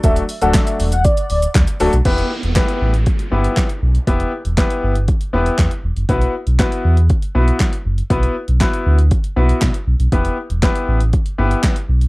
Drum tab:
CC |----------------|x---------------|----------------|----------------|
HH |xxoxxxoxxxoxxxox|xx-xxx-xxx-xxx-x|xx-xxx-xxx-xxx-x|xx-xxx-xxx-xxx-x|
SH |xxxxxxxxxxxxxxxx|----------------|----------------|----------------|
CP |----x-------x---|----x-------x---|----x-------x---|----x-------x---|
SD |----o-------o---|----o-------o---|----o-------o---|----o-------o---|
BD |o---o---o---o---|o---o---o---o---|o---o---o---o---|o---o---o---o---|

CC |----------------|----------------|
HH |xx-xxx-xxx-xxx-x|xx-xxx-xxx-xxx-x|
SH |----------------|----------------|
CP |----x-------x---|----x-------x---|
SD |----o-------o---|----o-------o---|
BD |o---o---o---o---|o---o---o---o---|